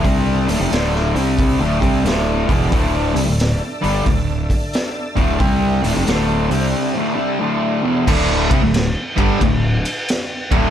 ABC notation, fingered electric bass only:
X:1
M:4/4
L:1/16
Q:"Swing" 1/4=90
K:C
V:1 name="Fingered electric bass" clef=bass
C,,2 D,,, F,,, D,,,2 C,,3 D,,, C,,2 D,,,2 E,,,2 | D,,,2 C,, D,,,2 z G,,,2 D,,,2 z4 D,,,2 | C,,2 D,,, F,,, D,,,2 C,,2 z8 | D,,,2 C,, D,,,2 z G,,,2 D,,,2 z4 D,,,2 |]